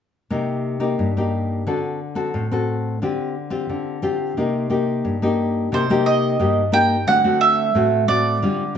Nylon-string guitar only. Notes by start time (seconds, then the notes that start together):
0.30 C3 A#3 D#4 G4
0.80 A#3 D#4 G4
0.99 G2
1.17 A#3 D#4 G4
1.67 D3 C4 F#4 A4
2.15 C4 F#4 A4
2.34 A2
2.51 C4 F#4 A4
3.02 D3 C4 F4 G4
3.50 C4 F4 G4
3.69 D3
4.02 C4 F4 G4
4.37 C3 A#3 D#4 G4
4.70 A#3 D#4 G4
5.05 G2
5.22 A#3 D#4 G4
5.72 C3 A#3 D#4 G4
5.90 A#3 D#4 G4
6.40 G2 A#3 D#4 G4
6.72 A#3 D#4 G4
7.07 D3 A3 C4 F#4
7.24 A3 C4 F#4
7.75 A2 A3 C4 F#4
8.08 A3 C4 F#4
8.42 D3 G3 C4 F4